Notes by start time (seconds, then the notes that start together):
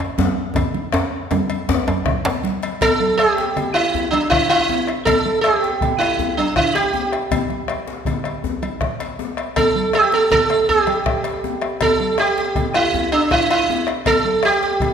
0.00 cowbell, djembe slap, djembe tone
0.18 djembe slap, high conga, djembe tone, djembe bass
0.37 djembe slap, high conga
0.55 bombo low, cowbell, djembe slap, high conga, djembe tone, low conga, djembe bass
0.74 djembe slap, high conga
0.93 bombo rim, cowbell, djembe slap, high conga, djembe tone
1.11 bombo rim
1.31 cowbell, djembe slap, djembe tone, high conga, low conga
1.50 cowbell, djembe slap
1.69 djembe slap, high conga, djembe tone, djembe bass
1.87 bombo rim, cowbell, djembe tone, high conga, djembe bass
2.06 bombo rim, bombo low, low conga, djembe bass
2.25 cowbell, djembe slap, djembe bass
2.44 djembe slap, high conga
2.63 cowbell, djembe slap
2.81 A4, bombo low, cowbell, high conga, low conga, djembe bass
3.00 bombo rim, high conga
3.17 G4, bombo rim, cowbell
3.37 bombo rim, djembe slap
3.56 cowbell, djembe slap, high conga, djembe tone, low conga
3.74 E4, bombo rim, cowbell
3.94 djembe slap, high conga, djembe bass
4.11 D4, cowbell, high conga
4.30 E4, bombo rim, bombo low, low conga
4.49 E4, cowbell, djembe slap
4.69 djembe tone
4.87 bombo rim, cowbell
5.05 A4, bombo low, cowbell, high conga, low conga, djembe bass
5.26 bombo rim, high conga
5.41 G4, bombo rim, cowbell
5.63 bombo rim, djembe slap
5.81 bombo low, cowbell, djembe slap, high conga, djembe tone, low conga
5.99 E4, bombo rim, cowbell
6.19 djembe slap, high conga, djembe bass
6.37 D4, cowbell, high conga
6.56 E4, bombo rim, bombo low, low conga
6.75 G4, cowbell, djembe slap
6.94 djembe tone
7.12 bombo rim, cowbell
7.31 bombo low, cowbell, high conga, low conga, djembe bass
7.50 bombo rim, high conga
7.68 bombo rim, cowbell
7.87 bombo rim, djembe slap
8.05 bombo low, cowbell, djembe slap, high conga, djembe tone, low conga
8.24 bombo rim, cowbell, high conga
8.44 djembe slap, high conga, djembe bass
8.62 cowbell, high conga
8.81 bombo rim, bombo low, low conga
9.00 cowbell, djembe slap
9.19 djembe tone
9.37 bombo rim, cowbell
9.56 A4, bombo low, cowbell, low conga, djembe bass
9.75 high conga
9.93 G4, bombo rim, cowbell, djembe slap
10.12 A4, djembe slap
10.31 A4, bombo low, cowbell, djembe slap, djembe tone, low conga
10.50 bombo rim, cowbell, djembe slap, high conga
10.69 G4, djembe slap, high conga, djembe bass
10.87 bombo rim, cowbell, high conga
11.06 bombo rim, bombo low, low conga
11.24 bombo rim, cowbell, djembe slap
11.44 djembe slap, djembe tone
11.62 bombo rim, cowbell, high conga
11.81 A4, bombo low, cowbell, high conga, low conga, djembe bass
12.00 bombo rim, high conga
12.18 G4, bombo rim, cowbell
12.37 bombo rim, djembe slap
12.55 bombo low, cowbell, djembe slap, high conga, djembe tone, low conga
12.74 E4, bombo rim, cowbell, high conga
12.94 djembe slap, high conga, djembe bass
13.12 D4, cowbell
13.31 E4, bombo rim, bombo low, low conga
13.50 E4, cowbell, djembe slap
13.70 djembe tone
13.87 bombo rim, cowbell
14.05 A4, bombo low, cowbell, high conga, low conga, djembe bass
14.24 bombo rim, high conga
14.43 G4, bombo rim, cowbell
14.61 bombo rim, djembe slap
14.80 bombo low, cowbell, djembe slap, high conga, djembe tone, low conga